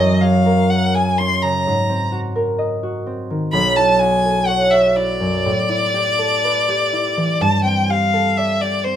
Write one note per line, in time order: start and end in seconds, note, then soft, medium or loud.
0.00 1.68 F#2 medium
0.00 1.19 C#4 soft
0.00 0.23 D#5 medium
0.21 0.94 G#4 soft
0.21 0.71 F5 medium
0.46 2.34 A#4 soft
0.70 1.69 F5 soft
0.70 0.96 F#5 medium
0.95 3.57 G#4 soft
0.95 1.20 G#5 medium
1.18 1.70 C#4 soft
1.18 1.44 C6 medium
1.43 1.69 C#3 soft
1.43 2.12 A#5 medium
1.67 3.57 G#2 medium
1.89 3.05 C4 soft
2.12 2.82 F#4 soft
2.35 3.56 A#4 soft
2.58 3.56 D#5 medium
2.83 4.00 F#4 soft
3.06 3.56 C4 soft
3.30 3.57 D#3 soft
3.52 5.48 B1 medium
3.52 3.78 B5 medium
3.76 4.95 E4 soft
3.76 4.01 A5 medium
3.99 4.72 F#4 soft
3.99 4.48 G#5 medium
4.25 6.17 A4 soft
4.47 5.48 C#5 soft
4.47 4.73 F#5 medium
4.71 5.48 F#4 soft
4.71 4.97 E5 medium
4.96 5.68 E4 soft
4.96 7.43 D5 medium
5.20 5.48 F#2 soft
5.45 7.45 A2 medium
5.69 6.92 E4 soft
5.94 6.67 G4 soft
6.18 8.12 A4 soft
6.44 7.45 B4 medium
6.68 7.88 G4 soft
6.93 7.44 E4 soft
7.17 7.44 E3 soft
7.41 8.96 G2 medium
7.41 7.64 A5 medium
7.64 8.85 C4 soft
7.64 7.92 G5 medium
7.89 8.61 G4 soft
7.89 8.39 F5 medium
8.13 8.96 A4 soft
8.37 8.96 D5 soft
8.37 8.63 E5 medium
8.62 8.96 G4 soft
8.62 8.86 D5 medium
8.84 8.96 C4 soft
8.84 8.96 C5 medium